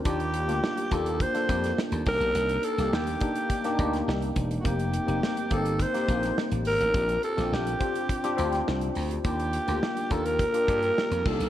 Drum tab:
CC |----------------|----------------|----------------|----------------|
HH |xxxx-xxxxxxx-xox|xxxx-xxxxxxx-xxx|xxxx-xxxxxxx-xox|xxxx-xxxxxxx-xox|
SD |---oo----o-oo-o-|---oo----o-oo---|----o----o-oo---|---oo----o-oo-o-|
BD |o-----o-o-o---o-|------o-o-o---o-|o-----o-o-o-----|o-----o-o-------|

CC |--------------x-|
HH |xxxx-xxxxxxx-x-x|
SD |---oo-------o-o-|
BD |o-----o-o-o---o-|